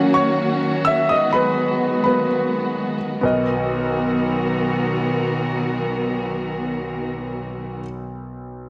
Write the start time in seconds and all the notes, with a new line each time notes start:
Already playing: D#3 F#3 A#3 C#4 F#4
0.14 C#5 C#6
0.85 E5 E6
1.09 G#3 B3 D#5 D#6
1.33 F#3 G#3 B3 B4 B5
2.04 F#3 A#3 B3 B4 B5
3.21 B1 D#3 B3 F#4 A#4
3.25 D#5